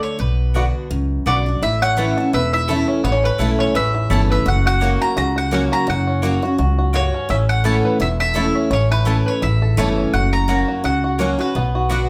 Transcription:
Already playing: D3 A3 D4 F#4
0.03 C#5
0.19 B1 B2 B4
0.54 D3 B3 D4 F#4 D5 F#5
0.90 C#2 F#2
1.26 B1 D3 B3 D4 F#4 D5 F#5
1.46 D4 F#4
1.62 A1 A2 E4 E5
1.82 C#4 F#5
1.97 E3 A3 C#4 E4 B4 C#5 A5
2.17 C#4 E4 A4
2.33 E1 E2 B4 E5
2.53 E4 E5
2.68 E3 A3 C#4 E4 A4 C#5 A5
2.88 C#4
3.04 A1 A2 B3 C#5
3.12 C#4
3.24 B4
3.38 B1 E3 A3 C#4 E4 A4 C#5 A5
3.59 C#4 C#5
3.75 A1 E2 B4 E5
3.94 E4
4.10 G1 E3 A3 C#4 E4 A4 C#5 A5
4.30 B4 E5
4.46 F#1 F#2 F#4 F#5
4.66 F#4 F#5
4.80 F#3 A#3 C#4 F#4 C#5 F#5
5.02 F#4 A#5
5.17 C#2 C#3 F#4 A#5
5.36 F#4 F#5
5.51 F#3 A#3 C#4 F#4 C#5 F#5
5.72 F#4 A#5
5.87 F#1 F#2 F#4 F#5
6.07 C#4
6.22 F#3 A#3 C#4 F#4 C#5 F#5
6.42 C#4 F#4
6.58 C#2 F#2 F#4
6.79 F#4
6.93 G2 A#3 F#4 C#5 F#5
7.14 C#4
7.29 A1 A2 C#4 E5
7.49 F#5
7.64 E3 A3 C#4 E4 A4 C#5 A5
7.85 B4
8.00 E1 E2 E4 E5
8.20 A4 E5
8.34 E3 A3 C#4 E4 C#5 A5
8.55 C#4
8.70 A1 A2 C#4 C#5
8.91 E4 B4
9.05 E3 A3 C#4 E4 A4 C#5 A5
9.26 B4 C#5
9.42 A1 E2 E4 E5
9.62 A4
9.77 G1 E3 A3 C#4 E4 C#5 A5
9.98 C#4
10.13 F#1 F#2 F#4 F#5
10.33 A#5
10.48 F#3 A#3 C#4 F#4 C#5 F#5
10.68 F#4
10.84 C#2 C#3 F#4 F#5
11.04 F#4
11.18 F#3 A#3 C#4 F#4 C#5 F#5
11.39 C#4 F#4 B4
11.55 B1 B2 B3
11.75 F#4
11.89 D3 B3 D4 F#4 D5 F#5

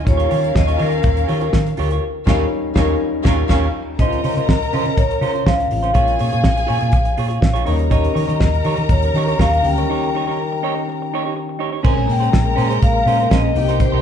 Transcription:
0.04 D#2 D#3 G3 C#4 A#4 F5, muted clean electric guitar stroke, kick, closed hi-hat
0.08 F4 C#5
0.17 F4 G4 C#5, closed hi-hat
0.29 D#3 F4 G4 C#5, open hi-hat
0.43 muted clean electric guitar stroke, closed hi-hat
0.55 D#2 D#5, muted clean electric guitar stroke, kick, snare
0.67 F4 G4 C#5, closed hi-hat
0.78 D#3 F4 G4 C#5, open hi-hat
0.82 A#4
0.91 muted clean electric guitar stroke, closed hi-hat
1.03 D#2, muted clean electric guitar stroke, kick, closed hi-hat
1.17 muted clean electric guitar stroke, closed hi-hat
1.28 D#3 F4 G4 C#5, open hi-hat
1.40 F4 G4 C#5, closed hi-hat
1.53 D#3, muted clean electric guitar stroke, kick, snare
1.66 muted clean electric guitar stroke, closed hi-hat
1.77 D2 F4 G4 C#5, open hi-hat
1.91 F4 G4 C#5, closed hi-hat
2.26 D#2 D#3 G3 C#4 D#4 F4 G4 A#4 C#5 F5, kick, snare, crash
2.74 D#2 D#3 G3 C#4 D#4 F4 G4 A#4 C#5 F5, kick, snare
3.23 D#2 C#4 F4 A#4 F5, kick, snare
3.27 G4 C#5
3.48 D#2 C#4 G4 A#4 C#5 F5, kick, snare, crash
3.52 F4
3.98 C#2 C3 C#3 G#3 C#4 D#4 F4 A#4 D#5 A#5, kick, closed hi-hat
4.02 C5
4.07 F4
4.12 closed hi-hat
4.24 C#3 C#4 F4 C5, open hi-hat
4.37 C#3 C#4 F4 C5, closed hi-hat
4.48 C#2, kick, snare
4.62 muted clean electric guitar stroke, closed hi-hat
4.73 C#3 C#4 F4 C5, open hi-hat
4.86 C#3, muted clean electric guitar stroke, closed hi-hat
4.97 C#2 C#5, muted clean electric guitar stroke, kick, closed hi-hat
5.11 muted clean electric guitar stroke, closed hi-hat
5.21 C#3 C#4 F4 C5, open hi-hat
5.34 C#4 F4 C5, closed hi-hat
5.46 C#2 C#4 F4 C5 F5, kick, snare
5.57 muted clean electric guitar stroke, closed hi-hat
5.70 A1 C#3 G#3 C4 F4 F5, muted clean electric guitar stroke, open hi-hat
5.83 C#4 F4 C5, closed hi-hat
5.94 A#1 C#3 G#3 A#3 F4 G#4 C#5 G#5, kick, closed hi-hat
6.08 closed hi-hat
6.19 A#2 F4 G#4 C#5, open hi-hat
6.32 A#2 F4 G#4 C#5, closed hi-hat
6.44 A#1, kick, snare
6.56 muted clean electric guitar stroke, closed hi-hat
6.67 A#2 F4 G#4 C#5, open hi-hat
6.80 A#2, muted clean electric guitar stroke, closed hi-hat
6.91 A#1, muted clean electric guitar stroke, kick, closed hi-hat
7.05 muted clean electric guitar stroke, closed hi-hat
7.17 A#2 F4 G#4 C#5, open hi-hat
7.28 F4 G#4 C#5, closed hi-hat
7.41 A#1, muted clean electric guitar stroke, kick, snare
7.53 F4 G#4 C#5, closed hi-hat
7.65 D#2 C#3 G3 A#3 D#4 G4 A#4 C#5 A#5, open hi-hat
7.78 muted clean electric guitar stroke, closed hi-hat
7.90 D#3 C#4 D#4 G4 C#5 D#5, kick, closed hi-hat
8.04 closed hi-hat
8.14 D#3 D#4 G4 C#5, open hi-hat
8.28 D#3 D#4 G4 C#5, closed hi-hat
8.40 D#2, kick, snare
8.53 muted clean electric guitar stroke, closed hi-hat
8.64 D#3 D#4 G4 C#5, open hi-hat
8.77 D#3, muted clean electric guitar stroke, closed hi-hat
8.89 D#2 C#5, muted clean electric guitar stroke, kick, closed hi-hat
9.02 muted clean electric guitar stroke, closed hi-hat
9.14 D#3 D#4 G4 C#5, open hi-hat
9.28 D#4 G4 C#5, closed hi-hat
9.39 D#2 D#4 G4 C#5 F5, kick, snare
9.52 muted clean electric guitar stroke, closed hi-hat
9.62 D2 C#3 G3 A#3 C#4 G5, muted clean electric guitar stroke, open hi-hat
9.78 D#4 G4 C#5, closed hi-hat
9.89 D#4 G4 C#5
10.15 D#4 G4 C#5
10.27 D#4 G4 C#5
10.52 muted clean electric guitar stroke
10.63 D#4 G4 C#5
10.77 muted clean electric guitar stroke
10.88 muted clean electric guitar stroke
11.02 muted clean electric guitar stroke
11.14 D#4 G4 C#5
11.25 D#4 G4 C#5
11.36 muted clean electric guitar stroke
11.49 muted clean electric guitar stroke
11.59 D#4 G4 C#5
11.72 D#4 G4 C#5
11.83 A#1 C3 C#3 G#3 A#3 C4 C#4 G#4 A#4 C5 G#5 A#5, kick, crash
11.90 C#3
11.96 A#1, muted clean electric guitar stroke
12.06 A#2, muted clean electric guitar stroke, open hi-hat
12.11 G5
12.20 C#4 G#4 C5, closed hi-hat
12.31 A#1, muted clean electric guitar stroke, kick, snare, closed hi-hat
12.45 muted clean electric guitar stroke
12.56 A#2 C#4 G#4 C5, open hi-hat
12.70 C#4 G#4 C5, closed hi-hat
12.81 A#1 F5, muted clean electric guitar stroke, kick, closed hi-hat
12.94 muted clean electric guitar stroke
13.05 A#2 C#4 G#4 C5, open hi-hat
13.20 C#4 G#4 C5, closed hi-hat
13.30 A#1 C#4 G#4 C5 D#5, kick, snare, closed hi-hat
13.44 muted clean electric guitar stroke
13.55 C2 C3 D#3 A#3 C4 D#4 G4 G5, muted clean electric guitar stroke, open hi-hat
13.69 D#4 A#4 C5, closed hi-hat
13.80 C5, muted clean electric guitar stroke, kick, closed hi-hat
13.92 C2 D#4 A#4 C5

